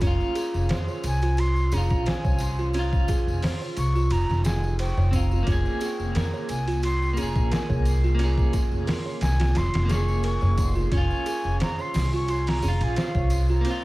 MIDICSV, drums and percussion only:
0, 0, Header, 1, 2, 480
1, 0, Start_track
1, 0, Tempo, 681818
1, 8, Time_signature, 4, 2, 24, 8
1, 9745, End_track
2, 0, Start_track
2, 0, Title_t, "Drums"
2, 4, Note_on_c, 9, 54, 56
2, 10, Note_on_c, 9, 36, 112
2, 11, Note_on_c, 9, 51, 86
2, 75, Note_off_c, 9, 54, 0
2, 80, Note_off_c, 9, 36, 0
2, 82, Note_off_c, 9, 51, 0
2, 142, Note_on_c, 9, 54, 28
2, 212, Note_off_c, 9, 54, 0
2, 249, Note_on_c, 9, 54, 89
2, 250, Note_on_c, 9, 51, 67
2, 320, Note_off_c, 9, 51, 0
2, 320, Note_off_c, 9, 54, 0
2, 382, Note_on_c, 9, 54, 40
2, 452, Note_off_c, 9, 54, 0
2, 486, Note_on_c, 9, 54, 49
2, 488, Note_on_c, 9, 51, 86
2, 497, Note_on_c, 9, 38, 113
2, 556, Note_off_c, 9, 54, 0
2, 558, Note_off_c, 9, 51, 0
2, 568, Note_off_c, 9, 38, 0
2, 621, Note_on_c, 9, 54, 27
2, 691, Note_off_c, 9, 54, 0
2, 728, Note_on_c, 9, 54, 100
2, 731, Note_on_c, 9, 51, 66
2, 799, Note_off_c, 9, 54, 0
2, 801, Note_off_c, 9, 51, 0
2, 856, Note_on_c, 9, 54, 43
2, 863, Note_on_c, 9, 51, 44
2, 926, Note_off_c, 9, 54, 0
2, 933, Note_off_c, 9, 51, 0
2, 964, Note_on_c, 9, 54, 54
2, 973, Note_on_c, 9, 51, 92
2, 1035, Note_off_c, 9, 54, 0
2, 1043, Note_off_c, 9, 51, 0
2, 1097, Note_on_c, 9, 54, 28
2, 1168, Note_off_c, 9, 54, 0
2, 1208, Note_on_c, 9, 54, 105
2, 1213, Note_on_c, 9, 51, 70
2, 1278, Note_off_c, 9, 54, 0
2, 1284, Note_off_c, 9, 51, 0
2, 1333, Note_on_c, 9, 54, 39
2, 1341, Note_on_c, 9, 36, 96
2, 1403, Note_off_c, 9, 54, 0
2, 1412, Note_off_c, 9, 36, 0
2, 1449, Note_on_c, 9, 54, 52
2, 1453, Note_on_c, 9, 51, 91
2, 1463, Note_on_c, 9, 38, 116
2, 1519, Note_off_c, 9, 54, 0
2, 1524, Note_off_c, 9, 51, 0
2, 1534, Note_off_c, 9, 38, 0
2, 1581, Note_on_c, 9, 36, 98
2, 1581, Note_on_c, 9, 54, 31
2, 1651, Note_off_c, 9, 36, 0
2, 1651, Note_off_c, 9, 54, 0
2, 1678, Note_on_c, 9, 54, 110
2, 1691, Note_on_c, 9, 51, 67
2, 1749, Note_off_c, 9, 54, 0
2, 1762, Note_off_c, 9, 51, 0
2, 1821, Note_on_c, 9, 54, 39
2, 1892, Note_off_c, 9, 54, 0
2, 1925, Note_on_c, 9, 54, 61
2, 1931, Note_on_c, 9, 51, 87
2, 1995, Note_off_c, 9, 54, 0
2, 2002, Note_off_c, 9, 51, 0
2, 2060, Note_on_c, 9, 36, 93
2, 2062, Note_on_c, 9, 54, 27
2, 2131, Note_off_c, 9, 36, 0
2, 2132, Note_off_c, 9, 54, 0
2, 2168, Note_on_c, 9, 54, 100
2, 2171, Note_on_c, 9, 36, 90
2, 2172, Note_on_c, 9, 51, 67
2, 2238, Note_off_c, 9, 54, 0
2, 2241, Note_off_c, 9, 36, 0
2, 2242, Note_off_c, 9, 51, 0
2, 2310, Note_on_c, 9, 54, 39
2, 2381, Note_off_c, 9, 54, 0
2, 2411, Note_on_c, 9, 46, 77
2, 2413, Note_on_c, 9, 54, 50
2, 2421, Note_on_c, 9, 38, 113
2, 2481, Note_off_c, 9, 46, 0
2, 2484, Note_off_c, 9, 54, 0
2, 2491, Note_off_c, 9, 38, 0
2, 2545, Note_on_c, 9, 54, 30
2, 2616, Note_off_c, 9, 54, 0
2, 2651, Note_on_c, 9, 51, 67
2, 2654, Note_on_c, 9, 54, 93
2, 2722, Note_off_c, 9, 51, 0
2, 2724, Note_off_c, 9, 54, 0
2, 2785, Note_on_c, 9, 54, 39
2, 2855, Note_off_c, 9, 54, 0
2, 2886, Note_on_c, 9, 54, 49
2, 2891, Note_on_c, 9, 51, 93
2, 2956, Note_off_c, 9, 54, 0
2, 2961, Note_off_c, 9, 51, 0
2, 3022, Note_on_c, 9, 54, 24
2, 3034, Note_on_c, 9, 38, 52
2, 3093, Note_off_c, 9, 54, 0
2, 3105, Note_off_c, 9, 38, 0
2, 3128, Note_on_c, 9, 54, 101
2, 3131, Note_on_c, 9, 51, 72
2, 3141, Note_on_c, 9, 38, 122
2, 3199, Note_off_c, 9, 54, 0
2, 3202, Note_off_c, 9, 51, 0
2, 3212, Note_off_c, 9, 38, 0
2, 3262, Note_on_c, 9, 54, 42
2, 3332, Note_off_c, 9, 54, 0
2, 3371, Note_on_c, 9, 51, 95
2, 3371, Note_on_c, 9, 54, 51
2, 3442, Note_off_c, 9, 51, 0
2, 3442, Note_off_c, 9, 54, 0
2, 3500, Note_on_c, 9, 54, 23
2, 3570, Note_off_c, 9, 54, 0
2, 3610, Note_on_c, 9, 36, 87
2, 3611, Note_on_c, 9, 51, 64
2, 3611, Note_on_c, 9, 54, 105
2, 3681, Note_off_c, 9, 36, 0
2, 3681, Note_off_c, 9, 51, 0
2, 3681, Note_off_c, 9, 54, 0
2, 3740, Note_on_c, 9, 54, 41
2, 3810, Note_off_c, 9, 54, 0
2, 3850, Note_on_c, 9, 36, 115
2, 3850, Note_on_c, 9, 51, 88
2, 3853, Note_on_c, 9, 54, 55
2, 3920, Note_off_c, 9, 51, 0
2, 3921, Note_off_c, 9, 36, 0
2, 3923, Note_off_c, 9, 54, 0
2, 3980, Note_on_c, 9, 54, 26
2, 4050, Note_off_c, 9, 54, 0
2, 4087, Note_on_c, 9, 54, 100
2, 4091, Note_on_c, 9, 51, 66
2, 4158, Note_off_c, 9, 54, 0
2, 4162, Note_off_c, 9, 51, 0
2, 4221, Note_on_c, 9, 54, 40
2, 4291, Note_off_c, 9, 54, 0
2, 4330, Note_on_c, 9, 51, 86
2, 4334, Note_on_c, 9, 54, 50
2, 4339, Note_on_c, 9, 38, 115
2, 4400, Note_off_c, 9, 51, 0
2, 4405, Note_off_c, 9, 54, 0
2, 4410, Note_off_c, 9, 38, 0
2, 4460, Note_on_c, 9, 54, 27
2, 4531, Note_off_c, 9, 54, 0
2, 4566, Note_on_c, 9, 54, 88
2, 4569, Note_on_c, 9, 51, 69
2, 4637, Note_off_c, 9, 54, 0
2, 4639, Note_off_c, 9, 51, 0
2, 4699, Note_on_c, 9, 51, 47
2, 4708, Note_on_c, 9, 54, 36
2, 4770, Note_off_c, 9, 51, 0
2, 4778, Note_off_c, 9, 54, 0
2, 4806, Note_on_c, 9, 54, 59
2, 4811, Note_on_c, 9, 51, 94
2, 4876, Note_off_c, 9, 54, 0
2, 4881, Note_off_c, 9, 51, 0
2, 4942, Note_on_c, 9, 54, 25
2, 5013, Note_off_c, 9, 54, 0
2, 5047, Note_on_c, 9, 54, 97
2, 5050, Note_on_c, 9, 51, 70
2, 5118, Note_off_c, 9, 54, 0
2, 5121, Note_off_c, 9, 51, 0
2, 5178, Note_on_c, 9, 54, 42
2, 5179, Note_on_c, 9, 36, 99
2, 5249, Note_off_c, 9, 36, 0
2, 5249, Note_off_c, 9, 54, 0
2, 5291, Note_on_c, 9, 51, 92
2, 5291, Note_on_c, 9, 54, 50
2, 5301, Note_on_c, 9, 38, 124
2, 5361, Note_off_c, 9, 54, 0
2, 5362, Note_off_c, 9, 51, 0
2, 5372, Note_off_c, 9, 38, 0
2, 5418, Note_on_c, 9, 36, 100
2, 5419, Note_on_c, 9, 54, 29
2, 5489, Note_off_c, 9, 36, 0
2, 5490, Note_off_c, 9, 54, 0
2, 5530, Note_on_c, 9, 51, 63
2, 5530, Note_on_c, 9, 54, 90
2, 5600, Note_off_c, 9, 51, 0
2, 5600, Note_off_c, 9, 54, 0
2, 5658, Note_on_c, 9, 54, 42
2, 5728, Note_off_c, 9, 54, 0
2, 5767, Note_on_c, 9, 51, 90
2, 5770, Note_on_c, 9, 54, 47
2, 5837, Note_off_c, 9, 51, 0
2, 5840, Note_off_c, 9, 54, 0
2, 5897, Note_on_c, 9, 36, 95
2, 5904, Note_on_c, 9, 54, 25
2, 5967, Note_off_c, 9, 36, 0
2, 5974, Note_off_c, 9, 54, 0
2, 6006, Note_on_c, 9, 54, 92
2, 6007, Note_on_c, 9, 36, 99
2, 6007, Note_on_c, 9, 51, 66
2, 6077, Note_off_c, 9, 36, 0
2, 6077, Note_off_c, 9, 51, 0
2, 6077, Note_off_c, 9, 54, 0
2, 6135, Note_on_c, 9, 54, 33
2, 6205, Note_off_c, 9, 54, 0
2, 6247, Note_on_c, 9, 46, 77
2, 6249, Note_on_c, 9, 54, 47
2, 6257, Note_on_c, 9, 38, 114
2, 6317, Note_off_c, 9, 46, 0
2, 6320, Note_off_c, 9, 54, 0
2, 6327, Note_off_c, 9, 38, 0
2, 6384, Note_on_c, 9, 54, 26
2, 6454, Note_off_c, 9, 54, 0
2, 6485, Note_on_c, 9, 51, 78
2, 6494, Note_on_c, 9, 38, 107
2, 6495, Note_on_c, 9, 54, 82
2, 6555, Note_off_c, 9, 51, 0
2, 6565, Note_off_c, 9, 38, 0
2, 6565, Note_off_c, 9, 54, 0
2, 6616, Note_on_c, 9, 51, 86
2, 6621, Note_on_c, 9, 54, 43
2, 6626, Note_on_c, 9, 38, 106
2, 6686, Note_off_c, 9, 51, 0
2, 6691, Note_off_c, 9, 54, 0
2, 6696, Note_off_c, 9, 38, 0
2, 6724, Note_on_c, 9, 51, 80
2, 6727, Note_on_c, 9, 54, 51
2, 6734, Note_on_c, 9, 38, 108
2, 6795, Note_off_c, 9, 51, 0
2, 6797, Note_off_c, 9, 54, 0
2, 6804, Note_off_c, 9, 38, 0
2, 6855, Note_on_c, 9, 51, 78
2, 6861, Note_on_c, 9, 54, 27
2, 6865, Note_on_c, 9, 38, 103
2, 6926, Note_off_c, 9, 51, 0
2, 6932, Note_off_c, 9, 54, 0
2, 6936, Note_off_c, 9, 38, 0
2, 6965, Note_on_c, 9, 54, 85
2, 6966, Note_on_c, 9, 51, 74
2, 6975, Note_on_c, 9, 38, 115
2, 7035, Note_off_c, 9, 54, 0
2, 7036, Note_off_c, 9, 51, 0
2, 7046, Note_off_c, 9, 38, 0
2, 7098, Note_on_c, 9, 54, 42
2, 7168, Note_off_c, 9, 54, 0
2, 7202, Note_on_c, 9, 54, 53
2, 7207, Note_on_c, 9, 51, 92
2, 7273, Note_off_c, 9, 54, 0
2, 7277, Note_off_c, 9, 51, 0
2, 7328, Note_on_c, 9, 54, 26
2, 7398, Note_off_c, 9, 54, 0
2, 7445, Note_on_c, 9, 36, 96
2, 7445, Note_on_c, 9, 54, 96
2, 7446, Note_on_c, 9, 51, 72
2, 7515, Note_off_c, 9, 54, 0
2, 7516, Note_off_c, 9, 36, 0
2, 7516, Note_off_c, 9, 51, 0
2, 7569, Note_on_c, 9, 54, 36
2, 7639, Note_off_c, 9, 54, 0
2, 7685, Note_on_c, 9, 36, 115
2, 7685, Note_on_c, 9, 51, 89
2, 7685, Note_on_c, 9, 54, 47
2, 7755, Note_off_c, 9, 54, 0
2, 7756, Note_off_c, 9, 36, 0
2, 7756, Note_off_c, 9, 51, 0
2, 7818, Note_on_c, 9, 54, 27
2, 7888, Note_off_c, 9, 54, 0
2, 7926, Note_on_c, 9, 54, 92
2, 7928, Note_on_c, 9, 51, 67
2, 7997, Note_off_c, 9, 54, 0
2, 7999, Note_off_c, 9, 51, 0
2, 8052, Note_on_c, 9, 54, 35
2, 8123, Note_off_c, 9, 54, 0
2, 8167, Note_on_c, 9, 54, 47
2, 8168, Note_on_c, 9, 51, 85
2, 8178, Note_on_c, 9, 38, 116
2, 8238, Note_off_c, 9, 51, 0
2, 8238, Note_off_c, 9, 54, 0
2, 8248, Note_off_c, 9, 38, 0
2, 8297, Note_on_c, 9, 54, 26
2, 8368, Note_off_c, 9, 54, 0
2, 8405, Note_on_c, 9, 54, 85
2, 8408, Note_on_c, 9, 46, 72
2, 8417, Note_on_c, 9, 38, 112
2, 8476, Note_off_c, 9, 54, 0
2, 8478, Note_off_c, 9, 46, 0
2, 8488, Note_off_c, 9, 38, 0
2, 8535, Note_on_c, 9, 54, 41
2, 8606, Note_off_c, 9, 54, 0
2, 8643, Note_on_c, 9, 54, 49
2, 8648, Note_on_c, 9, 51, 61
2, 8714, Note_off_c, 9, 54, 0
2, 8719, Note_off_c, 9, 51, 0
2, 8774, Note_on_c, 9, 54, 27
2, 8780, Note_on_c, 9, 46, 74
2, 8790, Note_on_c, 9, 38, 105
2, 8845, Note_off_c, 9, 54, 0
2, 8850, Note_off_c, 9, 46, 0
2, 8860, Note_off_c, 9, 38, 0
2, 8887, Note_on_c, 9, 54, 83
2, 8957, Note_off_c, 9, 54, 0
2, 9016, Note_on_c, 9, 54, 40
2, 9017, Note_on_c, 9, 51, 62
2, 9087, Note_off_c, 9, 54, 0
2, 9088, Note_off_c, 9, 51, 0
2, 9126, Note_on_c, 9, 54, 54
2, 9127, Note_on_c, 9, 51, 91
2, 9137, Note_on_c, 9, 38, 120
2, 9196, Note_off_c, 9, 54, 0
2, 9198, Note_off_c, 9, 51, 0
2, 9207, Note_off_c, 9, 38, 0
2, 9253, Note_on_c, 9, 54, 25
2, 9257, Note_on_c, 9, 36, 99
2, 9323, Note_off_c, 9, 54, 0
2, 9327, Note_off_c, 9, 36, 0
2, 9363, Note_on_c, 9, 54, 96
2, 9367, Note_on_c, 9, 51, 68
2, 9433, Note_off_c, 9, 54, 0
2, 9437, Note_off_c, 9, 51, 0
2, 9493, Note_on_c, 9, 54, 36
2, 9564, Note_off_c, 9, 54, 0
2, 9607, Note_on_c, 9, 51, 94
2, 9608, Note_on_c, 9, 54, 44
2, 9678, Note_off_c, 9, 51, 0
2, 9678, Note_off_c, 9, 54, 0
2, 9745, End_track
0, 0, End_of_file